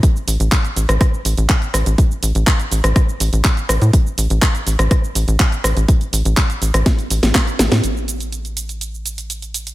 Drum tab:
HH |x-oxxxoxx-oxxxox|x-oxxxoxx-oxxxox|x-oxxxoxx-oxxxox|xxoxxxoxxxoxxxox|
SH |xxxxxxxxxxxxxxxx|xxxxxxxxxxxxxxxx|xxxxxxxxxxxxxxxx|xxxxxxxxxxxxxxxx|
CP |----x-------x---|----x-------x---|----x-------x---|----x-------x---|
SD |-------rr-----r-|-------rr-----r-|-------rr-----r-|-------ro--oo-oo|
BD |o---o---o---o---|o---o---o---o---|o---o---o---o---|o---o---o---o---|

HH |x-xxxxxxx-xxxxxx|
SH |xxxxxxxxxxxxxxxx|
CP |----------------|
SD |----------------|
BD |----------------|